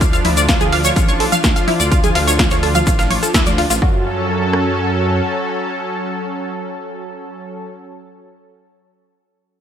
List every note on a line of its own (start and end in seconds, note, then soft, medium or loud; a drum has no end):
0.00 0.20 D2 medium
0.00 3.78 F3 medium
0.00 3.78 D4 medium
0.00 3.78 F4 medium
0.00 0.04 F4 medium
0.00 0.04 F5 medium
0.00 kick loud
0.00 closed hi-hat medium
0.00 shaker medium
0.13 0.16 F5 medium
0.13 0.16 F6 medium
0.13 closed hi-hat soft
0.13 shaker soft
0.25 0.56 D2 loud
0.25 0.30 E4 medium
0.25 0.30 E5 medium
0.25 closed hi-hat medium
0.25 open hi-hat loud
0.25 mid tom loud
0.37 0.42 D5 medium
0.37 0.42 D6 medium
0.37 closed hi-hat soft
0.37 shaker medium
0.49 0.56 F4 medium
0.49 0.56 F5 medium
0.49 kick loud
0.49 snare loud
0.49 closed hi-hat medium
0.49 shaker medium
0.61 0.91 D2 medium
0.61 0.66 G#4 loud
0.61 0.66 G#5 medium
0.61 closed hi-hat soft
0.61 mid tom loud
0.61 shaker soft
0.72 0.75 F5 loud
0.72 0.75 F6 medium
0.72 snare loud
0.72 closed hi-hat medium
0.72 open hi-hat medium
0.84 0.89 C#5 loud
0.84 0.89 C#6 medium
0.84 closed hi-hat soft
0.84 shaker medium
0.96 1.27 A1 medium
0.96 0.99 F4 medium
0.96 0.99 F5 medium
0.96 kick loud
0.96 closed hi-hat medium
0.96 mid tom loud
0.96 shaker medium
1.08 1.13 C#5 medium
1.08 1.13 C#6 medium
1.08 closed hi-hat soft
1.08 shaker soft
1.20 1.25 A4 medium
1.20 1.25 A5 medium
1.20 closed hi-hat medium
1.20 open hi-hat loud
1.32 1.35 F5 loud
1.32 1.35 F6 medium
1.32 closed hi-hat soft
1.32 mid tom loud
1.32 shaker medium
1.44 1.53 D2 medium
1.44 1.47 F4 medium
1.44 1.47 F5 medium
1.44 kick loud
1.44 snare loud
1.44 closed hi-hat medium
1.44 shaker medium
1.56 1.59 F5 medium
1.56 1.59 F6 medium
1.56 snare soft
1.56 closed hi-hat soft
1.56 shaker soft
1.68 1.73 E4 medium
1.68 1.73 E5 medium
1.68 open hi-hat medium
1.68 mid tom loud
1.80 2.10 D2 medium
1.80 1.85 D5 medium
1.80 1.85 D6 medium
1.80 closed hi-hat soft
1.80 shaker medium
1.91 1.99 F4 medium
1.91 1.99 F5 medium
1.91 kick loud
1.91 closed hi-hat medium
1.91 shaker medium
2.04 2.08 G#4 loud
2.04 2.08 G#5 medium
2.04 closed hi-hat soft
2.04 mid tom medium
2.04 shaker soft
2.15 2.46 D2 loud
2.15 2.18 F5 loud
2.15 2.18 F6 medium
2.15 snare loud
2.15 closed hi-hat medium
2.15 open hi-hat loud
2.27 2.32 C#5 loud
2.27 2.32 C#6 medium
2.27 closed hi-hat soft
2.27 shaker medium
2.39 2.42 F4 medium
2.39 2.42 F5 medium
2.39 kick loud
2.39 snare loud
2.39 closed hi-hat medium
2.39 mid tom medium
2.39 shaker medium
2.51 2.82 D2 loud
2.51 2.56 C#5 medium
2.51 2.56 C#6 medium
2.51 snare loud
2.51 closed hi-hat medium
2.51 closed hi-hat soft
2.51 shaker soft
2.63 2.68 A4 medium
2.63 2.68 A5 medium
2.63 closed hi-hat medium
2.63 open hi-hat medium
2.75 2.78 F5 loud
2.75 2.78 F6 medium
2.75 closed hi-hat soft
2.75 mid tom loud
2.75 shaker medium
2.87 3.17 A1 medium
2.87 2.90 F4 medium
2.87 2.90 F5 medium
2.87 kick loud
2.87 closed hi-hat medium
2.87 shaker medium
2.99 3.02 F5 medium
2.99 3.02 F6 medium
2.99 snare loud
2.99 closed hi-hat soft
2.99 closed hi-hat medium
2.99 shaker soft
3.11 3.14 C#5 medium
3.11 3.14 C#6 medium
3.11 open hi-hat loud
3.11 mid tom medium
3.23 3.30 A4 medium
3.23 3.30 A5 medium
3.23 closed hi-hat soft
3.23 closed hi-hat medium
3.23 shaker medium
3.34 3.65 D2 loud
3.34 3.42 E4 medium
3.34 3.42 E5 medium
3.34 kick loud
3.34 snare loud
3.34 closed hi-hat medium
3.34 shaker medium
3.46 3.49 D5 medium
3.46 3.49 D6 medium
3.46 snare soft
3.46 closed hi-hat soft
3.46 mid tom medium
3.46 shaker soft
3.58 3.61 F4 medium
3.58 3.61 F5 medium
3.58 snare loud
3.58 closed hi-hat medium
3.58 open hi-hat medium
3.70 3.79 A1 medium
3.70 3.73 F4 medium
3.70 3.73 F5 medium
3.70 snare loud
3.70 closed hi-hat medium
3.70 closed hi-hat soft
3.70 shaker medium
3.82 5.21 F#2 loud
3.82 7.65 F#3 medium
3.82 7.65 C#4 medium
3.82 4.04 F#4 medium
3.82 7.65 A4 medium
3.82 kick loud
4.53 cross-stick medium